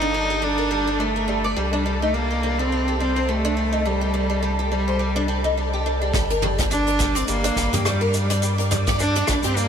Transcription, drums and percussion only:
0.43 shaker
0.70 shaker
0.87 shaker
1.00 shaker
1.28 shaker
1.44 shaker
1.56 shaker
1.86 shaker
2.02 shaker
2.10 shaker
2.14 shaker
2.42 shaker
2.58 shaker
2.71 shaker
2.87 shaker
2.99 shaker
3.16 shaker
3.27 shaker
3.56 shaker
3.72 shaker
3.85 shaker
4.43 shaker
4.79 shaker
4.87 shaker
4.99 shaker
5.16 shaker
5.28 shaker
5.45 shaker
5.57 shaker
5.62 shaker
5.67 shaker
5.73 shaker
5.76 shaker
5.82 shaker
5.86 shaker
6.01 shaker
6.14 kick, shaker
6.30 closed hi-hat
6.42 mid tom
6.59 kick, closed hi-hat, shaker
6.71 shaker
6.87 closed hi-hat
7.00 kick, shaker
7.16 closed hi-hat, shaker
7.28 shaker
7.44 closed hi-hat, shaker
7.56 kick, shaker
7.73 closed hi-hat, mid tom, shaker
7.85 cross-stick, shaker
8.14 shaker
8.30 closed hi-hat, shaker
8.43 shaker
8.60 closed hi-hat
8.71 mid tom, shaker
8.87 kick, closed hi-hat, shaker
8.99 shaker
9.15 closed hi-hat
9.27 kick, cross-stick, shaker
9.43 closed hi-hat, shaker
9.57 shaker

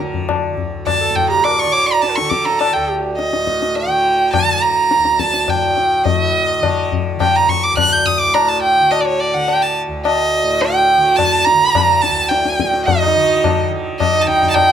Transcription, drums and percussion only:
0.00 tabla te
0.14 tabla ge
0.29 tabla na, tabla ge
0.57 tabla ge
0.87 tabla na, tabla ge
1.16 tabla ge
1.45 tabla na
2.03 tabla te
2.18 tabla te
2.31 tabla ke
2.46 tabla te
2.61 tabla na
3.19 tabla te
3.33 tabla te
3.47 tabla ke
3.62 tabla te
3.76 tabla tin
4.34 tabla na, tabla ge
4.91 tabla te
5.05 tabla te
5.20 tabla ke
5.34 tabla te
5.48 tabla na, tabla ge
5.77 tabla te
6.05 tabla tin, tabla ge
6.63 tabla na, tabla ge
6.92 tabla ge
7.20 tabla na, tabla ge
7.49 tabla ge
7.77 tabla na, tabla ge
8.06 tabla ge
8.35 tabla na
8.92 tabla na
9.48 tabla na
10.05 tabla na
10.61 tabla tin
11.19 tabla na, tabla ge
11.47 tabla te
11.75 tabla na, tabla ge
12.03 tabla te
12.31 tabla te
12.45 tabla te
12.60 tabla ke
12.74 tabla te
12.88 tabla tin, tabla ge
13.44 tabla na, tabla ge
14.00 tabla na, tabla ge
14.28 tabla te
14.42 tabla ge
14.56 tabla na, tabla ge

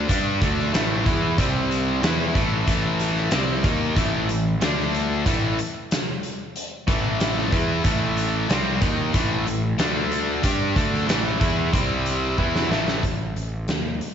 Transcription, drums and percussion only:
0.09 kick, closed hi-hat
0.42 kick, closed hi-hat
0.59 snare
0.74 snare, closed hi-hat
1.06 kick, closed hi-hat
1.38 kick, closed hi-hat
1.71 closed hi-hat
2.03 snare, closed hi-hat
2.35 kick, closed hi-hat
2.68 kick, closed hi-hat
3.00 snare, closed hi-hat
3.16 snare
3.31 snare, closed hi-hat
3.64 kick, closed hi-hat
3.96 kick, closed hi-hat
4.29 closed hi-hat
4.61 snare, closed hi-hat
4.79 snare
4.94 closed hi-hat
5.26 kick, closed hi-hat
5.59 closed hi-hat
5.91 snare, closed hi-hat
6.23 closed hi-hat
6.56 closed hi-hat
6.88 kick, closed hi-hat
7.20 snare, closed hi-hat
7.37 snare
7.52 kick, closed hi-hat
7.84 kick, closed hi-hat
8.17 closed hi-hat
8.50 snare, closed hi-hat
8.81 kick, closed hi-hat
9.14 kick, closed hi-hat
9.47 closed hi-hat
9.79 snare, closed hi-hat
10.12 closed hi-hat
10.43 kick, closed hi-hat
10.76 kick, closed hi-hat
10.94 snare
11.09 snare, closed hi-hat
11.41 kick, closed hi-hat
11.73 kick, closed hi-hat
12.06 closed hi-hat
12.38 kick
12.55 snare
12.72 snare
12.88 snare
13.03 kick, closed hi-hat
13.36 closed hi-hat
13.68 snare, closed hi-hat
14.01 closed hi-hat

